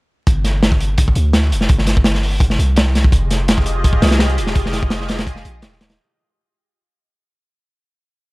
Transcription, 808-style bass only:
0, 0, Header, 1, 2, 480
1, 0, Start_track
1, 0, Tempo, 357143
1, 363, Time_signature, 4, 2, 24, 8
1, 11194, End_track
2, 0, Start_track
2, 0, Title_t, "808-style bass"
2, 0, Program_c, 0, 38
2, 363, Note_on_c, 0, 31, 100
2, 1544, Note_off_c, 0, 31, 0
2, 1559, Note_on_c, 0, 38, 98
2, 2039, Note_on_c, 0, 29, 85
2, 2059, Note_off_c, 0, 38, 0
2, 2258, Note_off_c, 0, 29, 0
2, 2278, Note_on_c, 0, 31, 97
2, 3462, Note_off_c, 0, 31, 0
2, 3479, Note_on_c, 0, 36, 97
2, 4183, Note_off_c, 0, 36, 0
2, 4197, Note_on_c, 0, 29, 97
2, 5382, Note_off_c, 0, 29, 0
2, 5404, Note_on_c, 0, 36, 100
2, 5885, Note_on_c, 0, 27, 89
2, 5906, Note_off_c, 0, 36, 0
2, 6101, Note_off_c, 0, 27, 0
2, 6123, Note_on_c, 0, 29, 97
2, 7305, Note_off_c, 0, 29, 0
2, 7324, Note_on_c, 0, 34, 99
2, 7562, Note_on_c, 0, 27, 86
2, 7582, Note_off_c, 0, 34, 0
2, 8024, Note_off_c, 0, 27, 0
2, 11194, End_track
0, 0, End_of_file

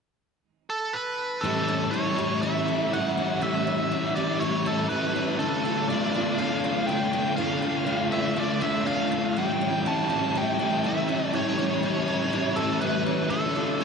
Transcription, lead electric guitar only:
0, 0, Header, 1, 2, 480
1, 0, Start_track
1, 0, Tempo, 494641
1, 1397, Time_signature, 4, 2, 24, 8
1, 13433, End_track
2, 0, Start_track
2, 0, Title_t, "Lead electric guitar"
2, 0, Program_c, 0, 29
2, 676, Note_on_c, 0, 69, 70
2, 906, Note_on_c, 0, 71, 76
2, 924, Note_off_c, 0, 69, 0
2, 1368, Note_on_c, 0, 69, 84
2, 1406, Note_off_c, 0, 71, 0
2, 1852, Note_on_c, 0, 73, 84
2, 1877, Note_off_c, 0, 69, 0
2, 2342, Note_off_c, 0, 73, 0
2, 2346, Note_on_c, 0, 76, 84
2, 2846, Note_off_c, 0, 76, 0
2, 2847, Note_on_c, 0, 78, 85
2, 3326, Note_on_c, 0, 76, 93
2, 3337, Note_off_c, 0, 78, 0
2, 4027, Note_off_c, 0, 76, 0
2, 4031, Note_on_c, 0, 74, 90
2, 4268, Note_off_c, 0, 74, 0
2, 4272, Note_on_c, 0, 73, 86
2, 4522, Note_off_c, 0, 73, 0
2, 4533, Note_on_c, 0, 69, 74
2, 4742, Note_off_c, 0, 69, 0
2, 4746, Note_on_c, 0, 71, 82
2, 5226, Note_off_c, 0, 71, 0
2, 5230, Note_on_c, 0, 69, 89
2, 5709, Note_off_c, 0, 69, 0
2, 5713, Note_on_c, 0, 74, 89
2, 6193, Note_on_c, 0, 77, 95
2, 6210, Note_off_c, 0, 74, 0
2, 6665, Note_off_c, 0, 77, 0
2, 6669, Note_on_c, 0, 79, 92
2, 7143, Note_off_c, 0, 79, 0
2, 7147, Note_on_c, 0, 77, 99
2, 7834, Note_off_c, 0, 77, 0
2, 7881, Note_on_c, 0, 76, 95
2, 8127, Note_off_c, 0, 76, 0
2, 8148, Note_on_c, 0, 74, 92
2, 8366, Note_on_c, 0, 76, 89
2, 8380, Note_off_c, 0, 74, 0
2, 8602, Note_off_c, 0, 76, 0
2, 8606, Note_on_c, 0, 77, 93
2, 9096, Note_off_c, 0, 77, 0
2, 9105, Note_on_c, 0, 79, 102
2, 9583, Note_on_c, 0, 81, 104
2, 9586, Note_off_c, 0, 79, 0
2, 10064, Note_off_c, 0, 81, 0
2, 10069, Note_on_c, 0, 79, 96
2, 10543, Note_on_c, 0, 76, 89
2, 10548, Note_off_c, 0, 79, 0
2, 11009, Note_off_c, 0, 76, 0
2, 11013, Note_on_c, 0, 73, 101
2, 12188, Note_on_c, 0, 69, 78
2, 12241, Note_off_c, 0, 73, 0
2, 12427, Note_off_c, 0, 69, 0
2, 12431, Note_on_c, 0, 71, 90
2, 12904, Note_off_c, 0, 71, 0
2, 12908, Note_on_c, 0, 69, 96
2, 13406, Note_off_c, 0, 69, 0
2, 13433, End_track
0, 0, End_of_file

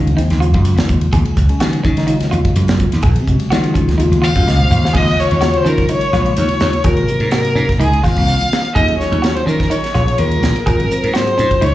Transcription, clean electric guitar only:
0, 0, Header, 1, 2, 480
1, 0, Start_track
1, 0, Tempo, 476190
1, 1139, Time_signature, 4, 2, 24, 8
1, 11838, End_track
2, 0, Start_track
2, 0, Title_t, "Clean electric guitar"
2, 0, Program_c, 0, 27
2, 0, Note_on_c, 0, 61, 75
2, 117, Note_off_c, 0, 61, 0
2, 169, Note_on_c, 0, 63, 77
2, 357, Note_off_c, 0, 63, 0
2, 407, Note_on_c, 0, 65, 72
2, 596, Note_off_c, 0, 65, 0
2, 1137, Note_on_c, 0, 68, 76
2, 1322, Note_off_c, 0, 68, 0
2, 1617, Note_on_c, 0, 66, 75
2, 1802, Note_off_c, 0, 66, 0
2, 1850, Note_on_c, 0, 61, 75
2, 2038, Note_off_c, 0, 61, 0
2, 2087, Note_on_c, 0, 63, 75
2, 2276, Note_off_c, 0, 63, 0
2, 2331, Note_on_c, 0, 65, 66
2, 2518, Note_off_c, 0, 65, 0
2, 3053, Note_on_c, 0, 68, 77
2, 3239, Note_off_c, 0, 68, 0
2, 3533, Note_on_c, 0, 66, 72
2, 3719, Note_off_c, 0, 66, 0
2, 3772, Note_on_c, 0, 61, 68
2, 3959, Note_off_c, 0, 61, 0
2, 4010, Note_on_c, 0, 63, 72
2, 4197, Note_off_c, 0, 63, 0
2, 4251, Note_on_c, 0, 65, 70
2, 4438, Note_off_c, 0, 65, 0
2, 4975, Note_on_c, 0, 68, 74
2, 5161, Note_off_c, 0, 68, 0
2, 5451, Note_on_c, 0, 66, 74
2, 5638, Note_off_c, 0, 66, 0
2, 5692, Note_on_c, 0, 61, 66
2, 5879, Note_off_c, 0, 61, 0
2, 5940, Note_on_c, 0, 63, 71
2, 6124, Note_off_c, 0, 63, 0
2, 6180, Note_on_c, 0, 65, 69
2, 6364, Note_off_c, 0, 65, 0
2, 6899, Note_on_c, 0, 68, 71
2, 7083, Note_off_c, 0, 68, 0
2, 7378, Note_on_c, 0, 66, 72
2, 7563, Note_off_c, 0, 66, 0
2, 7615, Note_on_c, 0, 61, 68
2, 7801, Note_off_c, 0, 61, 0
2, 7858, Note_on_c, 0, 63, 75
2, 8043, Note_off_c, 0, 63, 0
2, 8100, Note_on_c, 0, 65, 68
2, 8284, Note_off_c, 0, 65, 0
2, 8821, Note_on_c, 0, 68, 74
2, 9006, Note_off_c, 0, 68, 0
2, 9296, Note_on_c, 0, 66, 77
2, 9482, Note_off_c, 0, 66, 0
2, 9537, Note_on_c, 0, 61, 72
2, 9723, Note_off_c, 0, 61, 0
2, 9779, Note_on_c, 0, 63, 77
2, 9965, Note_off_c, 0, 63, 0
2, 10025, Note_on_c, 0, 65, 68
2, 10209, Note_off_c, 0, 65, 0
2, 10747, Note_on_c, 0, 68, 71
2, 10930, Note_off_c, 0, 68, 0
2, 11225, Note_on_c, 0, 66, 75
2, 11410, Note_off_c, 0, 66, 0
2, 11468, Note_on_c, 0, 61, 68
2, 11651, Note_off_c, 0, 61, 0
2, 11707, Note_on_c, 0, 63, 74
2, 11838, Note_off_c, 0, 63, 0
2, 11838, End_track
0, 0, End_of_file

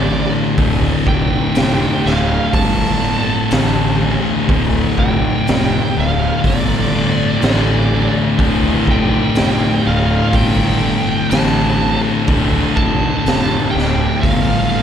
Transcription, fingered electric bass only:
0, 0, Header, 1, 2, 480
1, 0, Start_track
1, 0, Key_signature, -1, "minor"
1, 0, Tempo, 975610
1, 286, Time_signature, 4, 2, 24, 8
1, 7294, End_track
2, 0, Start_track
2, 0, Title_t, "Fingered electric bass"
2, 0, Program_c, 0, 33
2, 0, Note_on_c, 0, 33, 88
2, 117, Note_off_c, 0, 33, 0
2, 285, Note_on_c, 0, 26, 89
2, 441, Note_off_c, 0, 26, 0
2, 524, Note_on_c, 0, 29, 90
2, 680, Note_off_c, 0, 29, 0
2, 770, Note_on_c, 0, 29, 88
2, 924, Note_off_c, 0, 29, 0
2, 1011, Note_on_c, 0, 26, 97
2, 1165, Note_off_c, 0, 26, 0
2, 1246, Note_on_c, 0, 31, 82
2, 1557, Note_off_c, 0, 31, 0
2, 1732, Note_on_c, 0, 33, 88
2, 2041, Note_off_c, 0, 33, 0
2, 2208, Note_on_c, 0, 26, 77
2, 2363, Note_off_c, 0, 26, 0
2, 2449, Note_on_c, 0, 29, 86
2, 2604, Note_off_c, 0, 29, 0
2, 2696, Note_on_c, 0, 29, 91
2, 2848, Note_off_c, 0, 29, 0
2, 2935, Note_on_c, 0, 26, 96
2, 3088, Note_off_c, 0, 26, 0
2, 3169, Note_on_c, 0, 31, 77
2, 3479, Note_off_c, 0, 31, 0
2, 3655, Note_on_c, 0, 33, 91
2, 3962, Note_off_c, 0, 33, 0
2, 4127, Note_on_c, 0, 26, 84
2, 4282, Note_off_c, 0, 26, 0
2, 4366, Note_on_c, 0, 29, 92
2, 4521, Note_off_c, 0, 29, 0
2, 4614, Note_on_c, 0, 29, 82
2, 4766, Note_off_c, 0, 29, 0
2, 4854, Note_on_c, 0, 26, 92
2, 5007, Note_off_c, 0, 26, 0
2, 5084, Note_on_c, 0, 31, 88
2, 5395, Note_off_c, 0, 31, 0
2, 5568, Note_on_c, 0, 33, 96
2, 5878, Note_off_c, 0, 33, 0
2, 6042, Note_on_c, 0, 26, 87
2, 6198, Note_off_c, 0, 26, 0
2, 6282, Note_on_c, 0, 29, 87
2, 6438, Note_off_c, 0, 29, 0
2, 6523, Note_on_c, 0, 29, 94
2, 6679, Note_off_c, 0, 29, 0
2, 6759, Note_on_c, 0, 26, 102
2, 6916, Note_off_c, 0, 26, 0
2, 7001, Note_on_c, 0, 31, 88
2, 7294, Note_off_c, 0, 31, 0
2, 7294, End_track
0, 0, End_of_file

